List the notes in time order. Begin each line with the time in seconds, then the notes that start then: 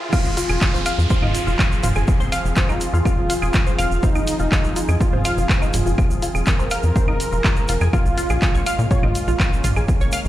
Already playing: riser
0.13 F3 C4 F4 G#4 F5, kick, crash, downlifter, claves, shaker
0.25 F1, shaker
0.37 F4 F5, open hi-hat, shaker
0.49 F1 G#4 G#5, claves, shaker
0.61 kick, clap, shaker
0.74 F1 C5 C6, shaker
0.86 F5 F6, open hi-hat, claves, shaker
0.98 F2, shaker
1.10 F4 C5 C6, kick, shaker
1.23 F1 D#4 D#5, mid tom, claves
1.35 open hi-hat, shaker
1.47 F1 F4 F5, shaker
1.59 F4 F5, kick, clap, open hi-hat, claves, shaker
1.72 shaker
1.83 F1 F4 F5, mid tom, open hi-hat, shaker
1.95 F1 G#4 G#5, claves, shaker
2.08 kick, shaker
2.20 F1 C5 C6, shaker
2.32 F5 F6, open hi-hat, claves, shaker
2.45 F1, shaker
2.56 F4 C5 C6, kick, clap, shaker
2.69 F1 D#4 D#5, claves, shaker
2.81 open hi-hat, shaker
2.93 F2 F4 F5, shaker
3.05 F4 F5, kick, claves, shaker
3.18 F1
3.30 F4 F5, open hi-hat, shaker
3.42 F1 G#4 G#5, claves, shaker
3.53 kick, clap, shaker
3.67 C5 C6, shaker
3.78 F1 F5 F6, open hi-hat, claves, shaker
3.91 F1, shaker
4.03 D#4 C5 C6, kick, shaker
4.15 F1 D#4 D#5, claves, shaker
4.27 open hi-hat, shaker
4.39 F1 F4 F5, shaker
4.52 F4 F5, kick, clap, claves, shaker
4.64 F1, shaker
4.76 F4 F5, open hi-hat, shaker
4.89 F2 G#4 G#5, claves, shaker
5.00 F4, kick, shaker
5.13 F1 C5 C6, mid tom
5.25 F5 F6, open hi-hat, claves, shaker
5.37 F1, shaker
5.49 C5 C6, kick, clap, open hi-hat, shaker
5.62 D#4 D#5, claves, shaker
5.74 F1, mid tom, open hi-hat, shaker
5.86 F1 F4 F5, shaker
5.98 F4 F5, kick, claves, shaker
6.10 F1, shaker
6.22 F4 F5, open hi-hat, shaker
6.35 F1 G#4 G#5, claves, shaker
6.46 A#4, kick, clap, shaker
6.59 F1 C5 C6, shaker
6.70 F5 F6, open hi-hat, claves, shaker
6.83 F2, shaker
6.96 C5 C6, kick, shaker
7.08 F1 D#4 D#5, claves
7.20 open hi-hat, shaker
7.32 F1 F4 F5, shaker
7.44 F4 F5, kick, clap, claves, shaker
7.56 shaker
7.68 F1 F4 F5, open hi-hat, shaker
7.81 F2 G#4 G#5, claves, shaker
7.93 G#3 A#3 C#4 F4 F5, kick, claves, shaker
8.06 A#1, shaker
8.18 F4 F5, open hi-hat, shaker
8.29 A#1 G#4 G#5, claves, shaker
8.42 kick, clap, shaker
8.54 A#1 C#5 C#6, shaker
8.66 F5 F6, open hi-hat, claves, shaker
8.79 A#2, shaker
8.91 F4 C#5 C#6, kick, shaker
9.03 A#1 D#4 D#5, mid tom, claves
9.15 open hi-hat, shaker
9.28 A#1 F4 F5, shaker
9.40 F4 F5, kick, clap, open hi-hat, claves, shaker
9.53 shaker
9.64 A#1 F4 F5, mid tom, open hi-hat, shaker
9.76 A#1 G#4 G#5, claves, shaker
9.88 kick, shaker
10.01 A#1 C#5 C#6, shaker
10.12 F5 F6, open hi-hat, claves, shaker
10.25 A#1, shaker